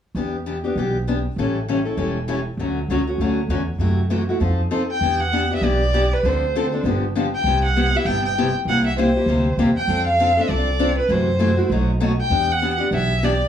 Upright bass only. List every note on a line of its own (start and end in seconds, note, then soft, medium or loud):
0.15 0.64 E2 medium
0.75 1.24 B1 medium
1.36 1.85 A1 medium
1.97 2.46 E1 medium
2.57 2.82 D2 medium
2.88 3.14 C#2 medium
3.18 3.44 D2 medium
3.48 3.75 E2 medium
3.78 4.28 F#2 medium
4.40 4.65 F2 medium
5.01 5.50 E2 medium
5.61 6.11 B1 medium
6.23 6.72 D2 medium
6.83 7.32 G1 medium
7.44 7.93 C2 medium
8.05 8.54 G1 medium
8.65 9.14 C2 medium
9.26 9.53 D2 medium
9.57 9.83 E2 medium
9.88 10.36 F2 medium
10.49 10.97 C2 medium
11.09 11.57 F#2 medium
11.70 12.18 B1 medium
12.30 12.79 E2 medium
12.91 13.40 B1 medium